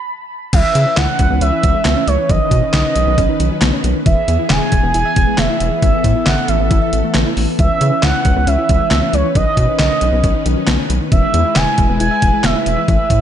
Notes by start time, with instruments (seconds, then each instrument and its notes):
Already playing: analog synth lead B5
0.53 analog synth bass C#2, synth arpeggio sound E3, string machine E3 C#4 B4, analog synth lead E5, kick, closed hi-hat, crash
0.75 analog synth bass C#3, closed hi-hat
0.86 synth arpeggio sound C#4
0.97 analog synth bass C#2, synth arpeggio sound E4, analog synth lead F#5, snare, clap, closed hi-hat
1.19 analog synth bass C#2, kick, closed hi-hat
1.30 analog synth bass C#2, synth arpeggio sound B3
1.41 analog synth bass C#2, synth arpeggio sound C#4, analog synth lead E5, closed hi-hat
1.52 synth arpeggio sound E4
1.63 analog synth bass C#2, synth arpeggio sound E3, kick, closed hi-hat
1.74 synth arpeggio sound G#3
1.85 analog synth bass C#2, synth arpeggio sound B3, snare, clap, closed hi-hat
1.96 synth arpeggio sound C#4
2.07 analog synth bass C#2, analog synth lead C#5, closed hi-hat
2.18 synth arpeggio sound E3
2.29 analog synth bass B1, synth arpeggio sound D#3, string machine D#3 C#4 B4, analog synth lead D#5, kick, closed hi-hat
2.51 analog synth bass B2, kick, closed hi-hat
2.63 synth arpeggio sound C#4
2.74 analog synth bass B1, synth arpeggio sound D#4, analog synth lead D#5, snare, clap, closed hi-hat
2.96 analog synth bass B1, closed hi-hat
3.07 analog synth bass B1, synth arpeggio sound B3
3.18 analog synth bass B1, synth arpeggio sound C#4, kick, closed hi-hat
3.29 synth arpeggio sound D#4
3.40 analog synth bass B1, synth arpeggio sound D#3, closed hi-hat
3.51 synth arpeggio sound F#3
3.62 analog synth bass B1, synth arpeggio sound B3, snare, clap, closed hi-hat
3.73 synth arpeggio sound C#4
3.84 analog synth bass B1, closed hi-hat
3.95 synth arpeggio sound D#3
4.06 analog synth bass E1, string machine E3 B3 G#4, synth arpeggio sound E3, analog synth lead E5, kick, closed hi-hat
4.28 analog synth bass E2, closed hi-hat
4.39 synth arpeggio sound E4
4.50 analog synth bass E1, synth arpeggio sound E5, analog synth lead G#5, snare, clap, closed hi-hat
4.72 analog synth bass E1, kick, closed hi-hat
4.83 analog synth bass E1, synth arpeggio sound B3
4.94 analog synth bass E1, synth arpeggio sound E4, analog synth lead G#5, closed hi-hat
5.05 synth arpeggio sound E5
5.16 analog synth bass E1, synth arpeggio sound E3, kick, closed hi-hat
5.27 synth arpeggio sound G#3
5.38 analog synth bass E1, synth arpeggio sound B3, analog synth lead E5, snare, clap, closed hi-hat
5.49 synth arpeggio sound E4
5.60 analog synth bass E1, closed hi-hat
5.71 synth arpeggio sound E3
5.82 analog synth bass A1, synth arpeggio sound E3, string machine A4, analog synth lead E5, kick, closed hi-hat
6.04 analog synth bass A2, kick, closed hi-hat
6.16 synth arpeggio sound E4
6.26 analog synth bass A1, synth arpeggio sound E5, analog synth lead F#5, snare, clap, closed hi-hat
6.48 analog synth bass A1, analog synth lead E5, closed hi-hat
6.60 analog synth bass A1, synth arpeggio sound B3
6.71 analog synth bass A1, synth arpeggio sound E4, kick, closed hi-hat
6.82 synth arpeggio sound E5
6.93 analog synth bass A1, synth arpeggio sound E3, closed hi-hat
7.04 synth arpeggio sound A3
7.14 analog synth bass A1, synth arpeggio sound B3, snare, clap, closed hi-hat
7.26 synth arpeggio sound E4
7.37 analog synth bass A1, open hi-hat
7.48 synth arpeggio sound E3
7.59 analog synth bass C#2, synth arpeggio sound E3, string machine E3 C#4 B4, analog synth lead E5, kick, closed hi-hat
7.81 analog synth bass C#3, closed hi-hat
7.92 synth arpeggio sound C#4
8.03 analog synth bass C#2, synth arpeggio sound E4, analog synth lead F#5, snare, clap, closed hi-hat
8.25 analog synth bass C#2, kick, closed hi-hat
8.36 analog synth bass C#2, synth arpeggio sound B3
8.47 analog synth bass C#2, synth arpeggio sound C#4, analog synth lead E5, closed hi-hat
8.58 synth arpeggio sound E4
8.69 analog synth bass C#2, synth arpeggio sound E3, kick, closed hi-hat
8.80 synth arpeggio sound G#3
8.91 analog synth bass C#2, synth arpeggio sound B3, snare, clap, closed hi-hat
9.02 synth arpeggio sound C#4
9.13 analog synth bass C#2, analog synth lead C#5, closed hi-hat
9.24 synth arpeggio sound E3
9.35 analog synth bass B1, synth arpeggio sound D#3, string machine D#3 C#4, analog synth lead D#5, kick, closed hi-hat
9.57 analog synth bass B2, kick, closed hi-hat
9.68 synth arpeggio sound C#4
9.79 analog synth bass B1, synth arpeggio sound D#4, analog synth lead D#5, snare, clap, closed hi-hat
10.01 analog synth bass B1, closed hi-hat
10.13 analog synth bass B1, synth arpeggio sound B3
10.23 analog synth bass B1, synth arpeggio sound C#4, kick, closed hi-hat
10.35 synth arpeggio sound D#4
10.46 analog synth bass B1, synth arpeggio sound D#3, closed hi-hat
10.57 synth arpeggio sound F#3
10.67 analog synth bass B1, synth arpeggio sound B3, snare, clap, closed hi-hat
10.79 synth arpeggio sound C#4
10.90 analog synth bass B1, closed hi-hat
11.01 synth arpeggio sound D#3
11.12 analog synth bass E1, synth arpeggio sound E3, string machine G#3 E4 B4, analog synth lead E5, kick, closed hi-hat
11.34 analog synth bass E2, closed hi-hat
11.45 synth arpeggio sound E4
11.56 analog synth bass E1, synth arpeggio sound E5, analog synth lead G#5, snare, clap, closed hi-hat
11.78 analog synth bass E1, kick, closed hi-hat
11.89 analog synth bass E1, synth arpeggio sound B3
12.00 analog synth bass E1, synth arpeggio sound E4, analog synth lead G#5, closed hi-hat
12.11 synth arpeggio sound E5
12.22 analog synth bass E1, synth arpeggio sound E3, kick, closed hi-hat
12.33 synth arpeggio sound G#3
12.44 analog synth bass E1, synth arpeggio sound B3, analog synth lead E5, snare, clap, closed hi-hat
12.55 synth arpeggio sound E4
12.66 analog synth bass E1, analog synth lead E5, closed hi-hat
12.77 synth arpeggio sound E3
12.88 analog synth bass A1, synth arpeggio sound E3, string machine A3 E4, analog synth lead E5, kick, closed hi-hat
13.10 analog synth bass A2, kick, closed hi-hat